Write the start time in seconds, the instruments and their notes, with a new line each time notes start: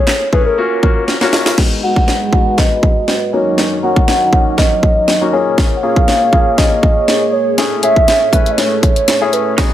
Already playing: grand piano A3 C#4 E4 G#4, soft synth lead C#5
0.07 snare, clap
0.33 grand piano A3 C#4 E4 G#4, soft synth lead B4, kick
0.46 soft synth lead A#4
0.58 grand piano A#3 C#4 F4 F#4
0.83 grand piano A#3 C#4 F4 F#4, kick
1.08 snare
1.21 grand piano A#3 C#4 F4 F#4, snare
1.33 snare
1.46 snare
1.58 grand piano G#3 B3 D#4 F#4, analog synth pad G#3 F#4 B4, kick, snare, crash
1.83 grand piano G#3 B3 D#4 F#4, soft synth lead F#5
1.96 kick
2.08 snare
2.33 grand piano G#3 B3 D#4 F#4, kick
2.58 soft synth lead D#5, kick, snare
2.83 kick
3.08 snare
3.33 analog synth pad F#3 D#4 C#5, grand piano A#3 C#4 D#4 F#4, soft synth lead C#5
3.58 snare
3.83 grand piano A#3 C#4 D#4 F#4, soft synth lead F#5
3.96 kick
4.08 snare
4.33 grand piano A#3 C#4 D#4 F#4, kick
4.58 soft synth lead D#5, kick, snare
4.83 kick
5.08 snare
5.21 grand piano A#3 C#4 D#4 F#4
5.33 grand piano A#3 C#4 F4 G#4, analog synth pad A#3 G#4, soft synth lead C#5
5.58 kick, snare
5.76 soft synth lead F#5
5.83 grand piano A#3 C#4 F4 G#4, soft synth lead F5
5.96 kick
6.08 snare
6.33 grand piano A#3 C#4 F4 G#4, kick
6.58 soft synth lead D#5, kick, snare
6.83 kick
7.08 snare
7.33 soft synth lead C#5
7.58 grand piano A3 C#4 E4 G#4, analog synth pad A3, snare, closed hi-hat
7.83 grand piano A3 C#4 E4 G#4, soft synth lead E5, closed hi-hat
7.96 kick
8.08 snare, closed hi-hat
8.33 grand piano A3 C#4 E4 B4, kick, closed hi-hat
8.46 closed hi-hat
8.51 soft synth lead D#5
8.58 soft synth lead C#5, snare, closed hi-hat
8.83 kick, closed hi-hat
8.96 closed hi-hat
9.08 snare, closed hi-hat
9.21 grand piano A3 C#4 E4 G#4
9.33 soft synth lead B4, closed hi-hat
9.58 analog synth pad G#3 F#4 B4, grand piano B3 D#4 F#4 G#4, clean electric guitar C#4, kick, snare, closed hi-hat, riser